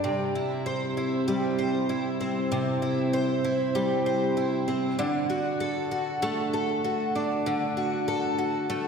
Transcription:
Already playing: G3 D4 G4 A4
0.04 C3
0.35 E4
0.66 C5
0.97 E4
1.28 G3
1.59 C5
1.89 E4
2.20 C4
2.52 C3
2.82 E4
3.13 C5
3.44 E4
3.75 G3
4.06 C5
4.37 E4
4.68 C4
4.99 D3
5.30 F#4
5.60 A4
5.91 F#4
6.22 A3
6.53 A4
6.84 F#4
7.15 D4
7.46 D3
7.77 F#4
8.08 A4
8.38 F#4
8.70 A3

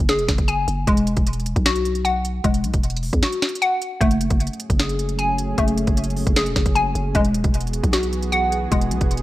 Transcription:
Already playing: A3 G#5
0.00 F#1
0.09 G#4, snare, closed hi-hat
0.19 E1, closed hi-hat
0.28 F#1, kick, snare, closed hi-hat
0.38 F#1, kick, closed hi-hat
0.48 G#5, closed hi-hat
0.68 F#1, closed hi-hat
0.87 E1 G#3, kick, closed hi-hat
0.97 closed hi-hat
1.07 closed hi-hat
1.17 E1, kick, closed hi-hat
1.27 closed hi-hat
1.33 closed hi-hat
1.40 closed hi-hat
1.46 closed hi-hat
1.56 B1, kick, closed hi-hat
1.66 F#4, snare, closed hi-hat
1.76 closed hi-hat
1.85 closed hi-hat
1.95 closed hi-hat
2.05 F#5, closed hi-hat
2.25 closed hi-hat
2.44 E1 G#3, kick, closed hi-hat
2.54 closed hi-hat
2.64 B1, closed hi-hat
2.74 E1, kick, closed hi-hat
2.83 closed hi-hat
2.90 closed hi-hat
2.97 closed hi-hat
3.03 open hi-hat
3.13 E2, kick, closed hi-hat
3.23 F#4, snare, closed hi-hat
3.32 closed hi-hat
3.42 snare, closed hi-hat
3.49 closed hi-hat
3.55 closed hi-hat
3.62 F#5, closed hi-hat
3.82 closed hi-hat
4.01 F#1 F#3 A3 C#4 G#4, kick, closed hi-hat
4.11 closed hi-hat
4.21 closed hi-hat
4.30 F#1, kick, closed hi-hat
4.40 closed hi-hat
4.47 closed hi-hat
4.53 closed hi-hat
4.60 closed hi-hat
4.70 F#1, kick, closed hi-hat
4.79 G#4, snare, closed hi-hat
4.89 closed hi-hat
4.99 closed hi-hat
5.09 closed hi-hat
5.19 G#5, closed hi-hat
5.38 closed hi-hat
5.58 F#1 A3, kick, closed hi-hat
5.68 closed hi-hat
5.78 closed hi-hat
5.87 F#1, kick, closed hi-hat
5.97 closed hi-hat
6.04 closed hi-hat
6.10 closed hi-hat
6.17 open hi-hat
6.27 F#1, kick, closed hi-hat
6.36 G#4, snare, closed hi-hat
6.46 E1, closed hi-hat
6.56 F#1, kick, snare, closed hi-hat
6.66 F#1, kick, closed hi-hat
6.75 G#5, closed hi-hat
6.95 F#1, closed hi-hat
7.15 E1 E3 G#3 B3 F#4 G#4, kick, closed hi-hat
7.25 closed hi-hat
7.34 closed hi-hat
7.44 E1, kick, closed hi-hat
7.54 closed hi-hat
7.61 closed hi-hat
7.67 closed hi-hat
7.73 closed hi-hat
7.84 B1, kick, closed hi-hat
7.93 F#4, snare, closed hi-hat
8.03 closed hi-hat
8.13 closed hi-hat
8.23 closed hi-hat
8.32 F#5, closed hi-hat
8.52 closed hi-hat
8.72 E1 G#3, kick, closed hi-hat
8.81 closed hi-hat
8.91 B1, closed hi-hat
9.01 E1, kick, closed hi-hat
9.11 closed hi-hat
9.17 closed hi-hat

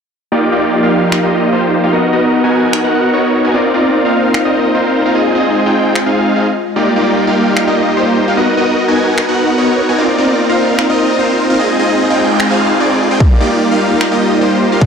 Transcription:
0.32 F3 A#3 D#4 F4 G4 D5
0.52 A#3 D#4 F4 G4 D5
0.83 A#3 D#4 F4 G4 F5
1.12 finger snap
1.23 A#3 D#4 F4 G4 D#5
1.53 A#3 D#4 F4 G4 C5
1.84 A#3 D#4 F4 G4 F5
1.93 B3 D#4 F#4 A#4 D#5
2.13 B3 D#4 F#4 A#4 D#5
2.44 B3 D#4 F#4 A#4 G#5
2.73 finger snap
2.84 B3 D#4 F#4 A#4 F#5
3.14 B3 D#4 F#4 A#4 C#5
3.45 B3 D#4 F#4 A#4 G#5
3.54 A#3 C4 D#4 F4 A#4 C5 D5
3.74 C4 D#4 F4 A#4 D5
4.05 C4 D#4 F4 A#4 F5
4.34 finger snap
4.45 C4 D#4 F4 A#4 D#5
4.75 C4 D#4 F4 A#4 C5
5.06 C4 D#4 F4 A#4 F5
5.15 G#3 C4 D#4 F4 G#4 D#5
5.35 C4 D#4 F4 G#4 D#5
5.66 C4 D#4 F4 G#4 G5
5.95 finger snap
6.06 C4 D#4 F4 G#4 F5
6.36 C4 D#4 F4 G#4 F5
6.76 G3 A#3 D#4 F4 G4 D5
6.96 A#3 D#4 F4 G4 D5
7.27 A#3 D#4 F4 G4 F5
7.57 finger snap
7.67 A#3 D#4 F4 G4 D#5
7.97 A#3 D#4 F4 G4 C5
8.28 A#3 D#4 F4 G4 F5
8.37 B3 D#4 F#4 A#4 D#5
8.57 B3 D#4 F#4 A#4 D#5
8.88 B3 D#4 F#4 A#4 G#5
9.18 finger snap
9.29 B3 D#4 F#4 A#4 F#5
9.58 B3 D#4 F#4 A#4 C#5
9.89 B3 D#4 F#4 A#4 G#5
9.98 A#3 C4 D#4 F4 A#4 C5 D5
10.18 C4 D#4 F4 A#4 D5
10.49 C4 D#4 F4 A#4 F5
10.79 finger snap
10.90 C4 D#4 F4 A#4 D#5
11.19 C4 D#4 F4 A#4 C5
11.50 C4 D#4 F4 A#4 F5
11.59 G#3 C4 D#4 F4 G#4 D#5, noise sweep
11.79 C4 D#4 F4 G#4 D#5
12.10 C4 D#4 F4 G#4 G5
12.40 finger snap
12.51 C4 D#4 F4 G#4 F5
12.80 C4 D#4 F4 G#4 D5
13.11 C4 D#4 F4 G#4 G5
13.20 G3 A#3 D#4 F4 G4 D5, kick
13.40 A#3 D#4 F4 G4 D5
13.71 A#3 D#4 F4 G4 F5
14.01 finger snap
14.12 A#3 D#4 F4 G4 D#5
14.41 A#3 D#4 F4 G4 C5
14.72 A#3 D#4 F4 G4 F5
14.81 B3 D#4 F#4 A#4 D#5, kick

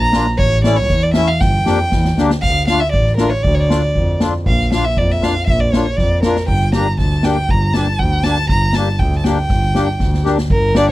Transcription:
Already playing: A#1
0.00 A#5
0.13 A#3 D4 F4, snare
0.26 snare
0.37 A1 C#5, kick
0.64 A3 C#4 E4 D5, snare
0.76 C#5
0.90 E2, kick
1.03 D5
1.13 A3 C#4 E4 E5, snare
1.27 F5
1.40 G1 G5, kick, snare
1.66 F2 A#3 D4 G4, snare
1.92 E2, kick, snare
2.05 snare
2.17 D2 A#3 D4 G4, snare
2.30 snare
2.42 D2 F5, kick
2.55 snare
2.67 A3 D4 F4 F5, snare
2.80 E5
2.91 A1 D5, kick
3.06 snare
3.16 A3 D4 F4 A#4, snare
3.30 C#5
3.43 D2 D5, kick
3.54 C#5 D5
3.69 A3 D4 F4, snare
3.95 F2, kick
4.20 A3 D4 F4, snare
4.46 A#1 F5, kick
4.59 snare
4.72 A#3 D4 F4 F5, snare
4.84 E5
4.97 F2 D5, kick
5.10 E5, snare
5.21 A#3 D4 F4 F5, snare
5.46 A#1 E5, kick
5.60 D5
5.72 A#3 D4 F4 C#5, snare
5.97 F2 D5, kick, snare
6.22 A#3 D4 F4 A#4, snare
6.36 snare
6.48 G1 G5, kick
6.60 snare
6.72 A#3 D4 G4 A#5, snare
6.98 D2 A5, kick, snare
7.10 snare
7.23 A#3 D4 G4 G5, snare
7.49 G1 A#5, kick
7.74 A#3 D4 G4 A5, snare
7.99 D2 G5, kick
8.12 snare
8.23 A#3 D4 G4 A5, snare
8.49 G1 A#5, kick, snare
8.73 A#3 D4 A5, snare
8.78 G4
8.99 D2 G5, kick
9.12 snare
9.18 A5
9.24 A#3 D4 G4 G5, snare
9.49 G1, kick, snare
9.62 snare
9.75 A#3 D4 G4, snare
10.00 D2, kick, snare
10.14 snare
10.25 A#3 D4 G4, snare
10.38 snare
10.50 G1 A#4, kick
10.75 A#3 D4 G4 D5, snare

